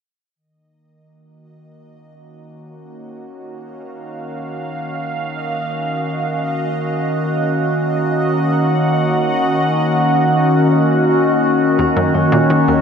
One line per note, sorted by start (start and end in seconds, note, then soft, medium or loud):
0.36 12.81 D#3 medium
0.36 11.80 D#5 medium
0.53 12.81 A#3 medium
0.99 12.81 F#4 medium
1.71 12.81 C#4 medium
3.09 8.06 F5 medium
7.84 11.79 F#5 medium
11.79 12.81 D#2 medium
11.79 11.86 D#2 loud
11.79 11.88 C#4 medium
11.79 12.81 C#5 medium
11.97 12.09 F#2 medium
12.14 12.27 F#2 medium
12.14 12.24 D#4 medium
12.26 12.81 F5 medium
12.32 12.40 A#2 medium
12.32 12.48 F#4 medium
12.50 12.63 D#3 medium
12.68 12.81 D#2 medium
12.68 12.81 A#4 medium